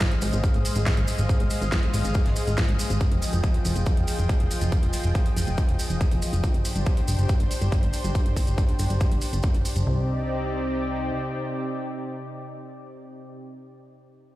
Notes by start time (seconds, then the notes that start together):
Already playing: G#3 G#4 C5 D#5 F5
0.00 kick, snare, closed hi-hat, maracas
0.11 closed hi-hat
0.21 G#1, open hi-hat, maracas
0.33 G#1, closed hi-hat, maracas
0.44 kick, closed hi-hat, maracas
0.54 G#1, closed hi-hat
0.65 open hi-hat, maracas
0.75 G#1, closed hi-hat, maracas
0.86 kick, snare, closed hi-hat, maracas
0.97 G#1, closed hi-hat
1.07 open hi-hat, maracas
1.18 G#1, closed hi-hat, maracas
1.29 kick, closed hi-hat, maracas
1.40 G#1, closed hi-hat
1.50 open hi-hat, maracas
1.61 G#1, closed hi-hat, maracas
1.72 kick, snare, closed hi-hat, maracas
1.83 closed hi-hat
1.94 G#1, open hi-hat, maracas
2.04 G#1, closed hi-hat, maracas
2.14 kick, closed hi-hat, maracas
2.26 G#1, snare, closed hi-hat
2.36 open hi-hat, maracas
2.47 G#1, closed hi-hat, maracas
2.57 kick, snare, closed hi-hat, maracas
2.69 G#1, closed hi-hat
2.79 open hi-hat, maracas
2.90 G#1, closed hi-hat, maracas
3.01 F3 F4 G5, kick, closed hi-hat, maracas
3.12 F1, closed hi-hat
3.22 open hi-hat, maracas
3.33 F1, closed hi-hat, maracas
3.44 kick, closed hi-hat, maracas
3.54 closed hi-hat
3.65 F1, open hi-hat, maracas
3.76 F1, closed hi-hat, maracas
3.86 kick, closed hi-hat, maracas
3.97 F1, closed hi-hat
4.08 open hi-hat, maracas
4.19 F1, closed hi-hat, maracas
4.29 kick, closed hi-hat, maracas
4.40 F1, closed hi-hat
4.51 open hi-hat, maracas
4.61 F1, closed hi-hat, maracas
4.72 kick, closed hi-hat, maracas
4.83 F1, closed hi-hat
4.93 open hi-hat, maracas
5.03 F1, closed hi-hat, maracas
5.15 kick, closed hi-hat, maracas
5.26 closed hi-hat
5.36 F1, open hi-hat, maracas
5.47 F1, closed hi-hat, maracas
5.57 kick, closed hi-hat, maracas
5.69 F1, closed hi-hat
5.79 open hi-hat, maracas
5.90 F1, closed hi-hat, maracas
6.01 kick, closed hi-hat, maracas
6.11 F1, closed hi-hat
6.22 open hi-hat, maracas
6.33 F1, closed hi-hat, maracas
6.44 D4 G4 C5, kick, closed hi-hat, maracas
6.54 G1, closed hi-hat
6.65 open hi-hat, maracas
6.76 G1, closed hi-hat, maracas
6.86 kick, closed hi-hat, maracas
6.97 closed hi-hat
7.08 G1, open hi-hat, maracas
7.19 G1, closed hi-hat, maracas
7.29 kick, closed hi-hat, maracas
7.40 G1, closed hi-hat
7.51 open hi-hat, maracas
7.61 G1, closed hi-hat, maracas
7.72 kick, closed hi-hat, maracas
7.83 G1, closed hi-hat
7.93 open hi-hat, maracas
8.04 G1, closed hi-hat, maracas
8.15 kick, closed hi-hat, maracas
8.26 G1, closed hi-hat
8.36 kick, open hi-hat, maracas
8.47 G1, closed hi-hat, maracas
8.58 kick, closed hi-hat, maracas
8.69 closed hi-hat
8.79 G1, open hi-hat, maracas
8.90 G1, closed hi-hat, maracas
9.01 kick, closed hi-hat, maracas
9.12 G1, closed hi-hat
9.21 open hi-hat, maracas
9.33 G1, closed hi-hat, maracas
9.43 kick, closed hi-hat, maracas
9.54 G1, closed hi-hat
9.65 open hi-hat, maracas
9.76 G1, closed hi-hat, maracas
9.86 C2 C3 C4 D#4 G4 D5